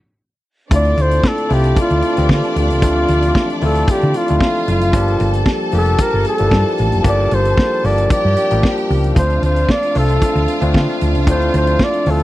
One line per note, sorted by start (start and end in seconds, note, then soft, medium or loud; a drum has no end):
0.71 0.93 D2 loud
0.71 4.90 D3 medium
0.71 1.21 A3 medium
0.71 2.81 C4 medium
0.71 1.22 C4 medium
0.71 4.36 D4 medium
0.71 1.22 D4 medium
0.71 1.21 E4 medium
0.71 1.22 F4 loud
0.71 4.90 A4 medium
0.71 4.37 D5 medium
0.71 kick loud
0.71 closed hi-hat loud
0.76 1.03 D5 loud
0.85 closed hi-hat soft
0.97 1.19 D2 loud
0.97 closed hi-hat medium
1.02 1.29 C5 loud
1.11 closed hi-hat medium
1.23 kick loud
1.23 snare loud
1.27 1.55 A4 loud
1.38 closed hi-hat soft
1.49 1.72 C2 loud
1.49 1.92 A3 medium
1.49 1.92 C4 medium
1.49 1.93 D4 medium
1.49 1.92 E4 medium
1.49 1.93 F4 medium
1.49 1.78 G4 medium
1.49 open hi-hat medium
1.64 closed hi-hat medium
1.76 kick loud
1.76 closed hi-hat medium
1.81 2.28 F4 loud
1.90 2.01 D2 medium
1.90 closed hi-hat soft
2.02 closed hi-hat medium
2.16 2.28 D2 medium
2.16 2.57 E3 medium
2.16 2.57 A3 medium
2.16 2.58 C4 medium
2.16 2.58 D4 medium
2.16 2.58 G4 medium
2.16 closed hi-hat medium
2.29 2.41 D3 loud
2.29 2.56 F4 medium
2.29 kick loud
2.29 snare medium
2.43 snare soft
2.43 closed hi-hat soft
2.56 2.71 D2 loud
2.56 3.59 F4 loud
2.56 closed hi-hat medium
2.70 2.83 C#2 medium
2.70 closed hi-hat medium
2.81 3.04 D2 loud
2.81 3.31 F3 medium
2.81 3.32 A3 medium
2.81 3.32 C4 medium
2.81 3.32 D4 medium
2.81 4.92 D4 medium
2.81 3.32 F4 medium
2.81 kick loud
2.81 closed hi-hat medium
3.08 3.30 D2 loud
3.08 closed hi-hat medium
3.22 closed hi-hat medium
3.35 kick loud
3.35 snare loud
3.50 closed hi-hat soft
3.61 3.84 D2 medium
3.61 4.03 A3 medium
3.61 4.04 C4 medium
3.61 4.04 D4 medium
3.61 4.03 E4 medium
3.61 4.04 F4 loud
3.61 3.92 A4 medium
3.61 open hi-hat medium
3.75 closed hi-hat soft
3.88 4.19 G4 medium
3.88 kick loud
3.88 closed hi-hat medium
4.02 4.13 D3 medium
4.02 closed hi-hat soft
4.14 4.68 F4 medium
4.14 closed hi-hat medium
4.28 4.40 D2 medium
4.28 4.69 F3 medium
4.28 4.69 A3 medium
4.28 4.69 C4 medium
4.28 4.69 D4 medium
4.28 4.70 F4 medium
4.28 closed hi-hat medium
4.40 4.92 F4 loud
4.40 4.93 F5 medium
4.40 kick loud
4.40 snare loud
4.55 snare soft
4.68 4.94 F#1 medium
4.68 5.44 F4 medium
4.68 closed hi-hat medium
4.81 closed hi-hat medium
4.93 5.15 G1 loud
4.93 9.12 F3 medium
4.93 5.44 F3 medium
4.93 5.44 G3 medium
4.93 9.12 A#3 medium
4.93 5.44 A#3 medium
4.93 5.44 D4 medium
4.93 9.12 G4 loud
4.93 5.45 G4 loud
4.93 8.06 A4 medium
4.93 8.06 A5 medium
4.93 kick loud
4.93 closed hi-hat medium
5.08 closed hi-hat soft
5.20 5.42 G1 loud
5.20 closed hi-hat medium
5.34 closed hi-hat medium
5.46 kick loud
5.46 snare loud
5.72 5.94 F1 medium
5.72 6.14 F3 medium
5.72 6.15 G3 medium
5.72 6.15 A#3 medium
5.72 6.15 D4 medium
5.72 6.16 G4 loud
5.72 open hi-hat medium
5.77 6.03 A4 loud
5.86 closed hi-hat soft
5.98 6.27 A#4 loud
5.98 kick loud
5.98 closed hi-hat medium
6.14 6.24 G1 medium
6.25 6.76 A4 loud
6.25 closed hi-hat medium
6.38 6.50 G1 medium
6.38 6.80 F3 medium
6.38 6.80 G3 medium
6.38 6.80 A#3 medium
6.38 6.80 D4 medium
6.38 6.81 E4 medium
6.38 closed hi-hat medium
6.51 6.63 G2 medium
6.51 kick loud
6.51 snare loud
6.67 snare soft
6.78 6.91 A1 loud
6.78 closed hi-hat medium
6.92 7.03 F#1 medium
6.92 closed hi-hat soft
7.03 7.26 G1 loud
7.03 7.53 F3 medium
7.03 7.54 G3 medium
7.03 7.54 A#3 medium
7.03 7.54 D4 medium
7.03 7.54 G4 loud
7.03 kick loud
7.03 closed hi-hat medium
7.09 7.36 D5 loud
7.31 7.53 G1 loud
7.31 7.87 C5 loud
7.31 closed hi-hat medium
7.45 closed hi-hat medium
7.58 kick loud
7.58 snare loud
7.83 8.06 G1 medium
7.83 8.25 F3 medium
7.83 8.26 G3 medium
7.83 8.26 A#3 medium
7.83 8.26 D4 medium
7.83 8.26 G4 medium
7.83 8.11 D5 loud
7.83 open hi-hat medium
7.98 closed hi-hat medium
8.10 9.14 G4 medium
8.10 8.86 D5 loud
8.10 9.14 G5 medium
8.10 muted fingered electric bass stroke soft
8.10 kick loud
8.10 closed hi-hat medium
8.25 8.35 G2 medium
8.37 closed hi-hat medium
8.51 8.61 A1 medium
8.51 8.91 F3 medium
8.51 8.91 G3 medium
8.51 8.91 A#3 medium
8.51 8.91 D4 medium
8.51 8.92 G4 medium
8.51 closed hi-hat medium
8.63 kick loud
8.63 snare medium
8.78 closed hi-hat soft
8.90 9.11 C#2 loud
8.90 open hi-hat medium
9.04 closed hi-hat medium
9.15 9.38 D2 loud
9.15 9.65 F3 medium
9.15 12.23 F3 medium
9.15 9.65 A3 medium
9.15 9.65 C4 medium
9.15 12.23 C4 medium
9.15 9.66 D4 medium
9.15 12.23 D4 medium
9.15 12.23 F4 medium
9.15 9.66 F4 medium
9.15 9.42 C5 loud
9.15 12.23 F5 medium
9.15 kick loud
9.15 closed hi-hat medium
9.30 closed hi-hat soft
9.42 9.64 D2 loud
9.42 9.72 C5 loud
9.42 closed hi-hat medium
9.56 closed hi-hat medium
9.69 9.99 D5 loud
9.69 kick medium
9.69 snare loud
9.83 closed hi-hat soft
9.94 10.17 C2 loud
9.94 10.36 F3 medium
9.94 10.37 A3 medium
9.94 10.37 C4 medium
9.94 10.37 D4 medium
9.94 10.37 F4 medium
9.94 10.75 A4 medium
9.94 open hi-hat medium
10.09 closed hi-hat medium
10.22 kick loud
10.22 closed hi-hat medium
10.36 10.46 D2 medium
10.36 closed hi-hat soft
10.48 closed hi-hat medium
10.61 10.72 D2 medium
10.61 11.02 F3 medium
10.61 11.02 A3 medium
10.61 11.02 C4 medium
10.61 11.02 D4 medium
10.61 11.03 F4 loud
10.61 closed hi-hat medium
10.74 10.86 D3 loud
10.74 kick loud
10.74 snare loud
10.89 snare soft
11.01 11.15 D2 loud
11.01 closed hi-hat medium
11.15 11.27 C#2 medium
11.15 closed hi-hat medium
11.27 11.49 D2 loud
11.27 11.77 F3 medium
11.27 11.77 A3 medium
11.27 11.77 C4 medium
11.27 11.77 D4 medium
11.27 11.34 E4 medium
11.27 11.53 C5 loud
11.27 kick loud
11.27 closed hi-hat loud
11.34 11.80 F4 medium
11.41 closed hi-hat soft
11.54 11.75 D2 loud
11.54 11.85 C5 loud
11.54 closed hi-hat medium
11.67 closed hi-hat medium
11.79 kick loud
11.79 snare loud
11.84 12.12 D5 loud
11.93 closed hi-hat soft
12.06 12.23 D2 loud
12.06 12.23 F3 medium
12.06 12.23 A3 medium
12.06 12.23 C4 medium
12.06 12.23 D4 medium
12.06 12.23 F4 medium
12.06 open hi-hat medium
12.11 12.23 A4 medium
12.20 closed hi-hat medium